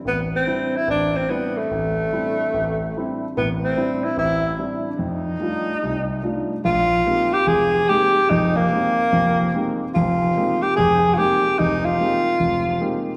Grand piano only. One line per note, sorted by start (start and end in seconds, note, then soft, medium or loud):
0.05 0.41 A1 medium
0.46 0.75 G3 soft
0.46 0.75 C4 soft
0.46 0.75 D4 soft
0.46 0.75 E4 soft
0.88 1.23 A1 medium
1.29 1.57 G3 soft
1.29 1.58 C4 soft
1.29 1.58 D4 soft
1.29 1.58 E4 soft
1.71 2.06 A1 medium
2.13 2.40 G3 soft
2.13 2.41 C4 soft
2.13 2.41 D4 soft
2.13 2.41 E4 soft
2.54 2.89 A1 medium
2.97 3.24 G3 soft
2.97 3.24 C4 soft
2.97 3.24 D4 soft
2.97 3.24 E4 soft
3.37 3.72 A1 medium
3.37 3.72 A2 medium
3.77 4.05 G3 soft
3.77 4.05 C4 soft
3.77 4.05 D4 soft
3.77 4.05 E4 medium
4.17 4.53 A1 medium
4.58 4.87 G3 soft
4.58 4.87 C4 soft
4.58 4.87 D4 soft
4.58 4.87 E4 soft
4.99 5.35 F2 medium
5.40 5.69 G3 soft
5.40 5.70 A3 soft
5.40 5.70 D4 soft
5.40 5.70 D#4 soft
5.40 5.70 F4 soft
5.83 6.19 C2 medium
5.83 6.19 C3 medium
6.22 6.52 G3 soft
6.22 6.52 A3 soft
6.22 6.52 D4 soft
6.22 6.52 D#4 soft
6.22 6.52 F4 soft
6.65 7.01 A#1 medium
7.06 7.35 G#3 soft
7.06 7.35 A#3 soft
7.06 7.35 C4 soft
7.06 7.36 D#4 soft
7.06 7.35 G4 medium
7.47 7.83 F1 medium
7.90 8.18 G#3 medium
7.90 8.18 A#3 soft
7.90 8.18 C4 soft
7.90 8.18 D#4 soft
7.90 8.18 G4 medium
8.30 8.66 F1 medium
8.30 8.66 F2 medium
8.72 9.00 G#3 medium
8.72 9.00 A#3 soft
8.72 9.00 C4 soft
8.72 9.00 D#4 soft
8.72 9.00 G4 medium
9.12 9.48 F1 medium
9.12 9.48 F2 medium
9.54 9.83 G#3 soft
9.54 9.82 A#3 soft
9.54 9.83 C4 soft
9.54 9.83 D#4 soft
9.54 9.83 G4 soft
9.96 10.31 F1 medium
9.96 10.31 F2 medium
10.37 10.65 G#3 soft
10.37 10.65 A#3 soft
10.37 10.65 C4 soft
10.37 10.65 D#4 soft
10.37 10.65 G4 medium
10.78 11.13 F1 medium
10.78 11.13 F2 medium
11.18 11.47 G#3 soft
11.18 11.47 A#3 soft
11.18 11.47 C4 soft
11.18 11.47 D#4 soft
11.18 11.47 G4 medium
11.60 11.95 F1 medium
12.00 12.29 G#3 soft
12.00 12.29 A#3 soft
12.00 12.29 C4 soft
12.00 12.29 D#4 soft
12.00 12.29 G4 medium
12.40 12.76 F1 medium
12.81 13.10 G#3 soft
12.81 13.10 A#3 soft
12.81 13.11 C4 soft
12.81 13.11 D#4 soft
12.81 13.11 G4 medium